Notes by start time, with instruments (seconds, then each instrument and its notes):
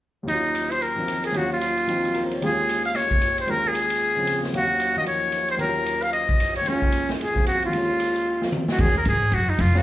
0.23 grand piano D#2 D#3
0.28 grand piano F#3 C#4, muted trumpet D#4, ride
0.34 grand piano F4
0.55 hi-hat pedal, ride
0.71 muted trumpet C5, ride
0.82 muted trumpet A#4, ride
0.96 grand piano D#3 F3 C4 D#4
1.08 hi-hat pedal, ride
1.24 muted trumpet G#4, ride
1.32 grand piano D#2 D#3 F#3 C#4, ride
1.37 grand piano F4, muted trumpet F#4
1.53 muted trumpet F4
1.61 hi-hat pedal, ride
1.78 ride
1.87 grand piano D#3 F3 C4 D#4, ride
2.05 grand piano F#4, ride
2.14 grand piano A#4, hi-hat pedal, ride
2.25 grand piano C5
2.31 grand piano C#5, ride
2.42 grand piano D#2 D#3 G#3 C#4 F4, muted trumpet G#4, ride
2.69 hi-hat pedal, ride
2.85 muted trumpet F5, ride
2.94 muted trumpet C#5, snare, ride
3.11 kick
3.22 hi-hat pedal, ride
3.38 muted trumpet C5, ride
3.47 grand piano D#2 D#3 G#3 C#4 F4, muted trumpet A#4, ride
3.68 muted trumpet G#4
3.75 hi-hat pedal, ride
3.90 ride
4.16 grand piano C#3 F3 C4
4.27 hi-hat pedal, ride
4.44 snare
4.53 grand piano D#2 D#3 F#3 C#4 F5, muted trumpet F#4, ride
4.80 hi-hat pedal, ride
4.97 grand piano D#3 F3 A#3 D#4, muted trumpet D#5
5.06 muted trumpet C#5, ride
5.32 hi-hat pedal, ride
5.48 muted trumpet C5, ride
5.57 grand piano D#2 D#3 F#3 C#4, muted trumpet A#4, ride
5.62 grand piano F4
5.86 hi-hat pedal, ride
6.02 muted trumpet F5, ride
6.13 muted trumpet D#5, ride
6.29 kick
6.40 hi-hat pedal, ride
6.55 muted trumpet C#5, ride
6.61 grand piano D#2 D#3
6.66 grand piano G#3 C#4, muted trumpet C#4, ride
6.72 grand piano F4
6.82 kick
6.92 hi-hat pedal, ride
7.09 snare, ride
7.21 muted trumpet G#4, ride
7.34 grand piano F3 C4 F4, kick
7.46 muted trumpet F#4, hi-hat pedal, ride
7.62 muted trumpet F4, ride
7.67 grand piano D#2 D#3
7.73 grand piano G#3 C#4, ride
7.78 grand piano F4
8.00 hi-hat pedal, ride
8.16 ride
8.42 grand piano F3 C4 F4, snare
8.52 hi-hat pedal, high tom
8.68 muted trumpet F#4, snare
8.78 upright bass D#2, grand piano D#3 G#3 C#4 F#4, muted trumpet G#4, kick, crash
8.97 muted trumpet A#4
9.05 upright bass G#2, muted trumpet G#4, hi-hat pedal, ride
9.32 upright bass F#2, muted trumpet F#4, ride
9.50 muted trumpet D#4
9.59 upright bass F2, muted trumpet F4, hi-hat pedal, ride
9.74 grand piano C#3 F#3 C4 F5, muted trumpet F#4, snare